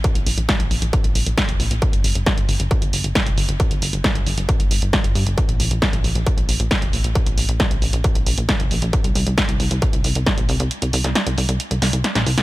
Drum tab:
HH |xxoxxxoxxxoxxxox|xxoxxxoxxxoxxxox|xxoxxxoxxxoxxxox|xxoxxxoxxxoxxxox|
SD |----o-------o---|----o-------o---|----o-------o---|----o-------o---|
BD |o---o---o---o---|o---o---o---o---|o---o---o---o---|o---o---o---o---|

HH |xxoxxxoxxxoxxxox|xxoxxxoxxxoxxxox|xxoxxxoxxxoxxxox|
SD |----o-------o---|----o-------o---|---oo-----o-oo-o|
BD |o---o---o---o---|o---o---o---o---|----------------|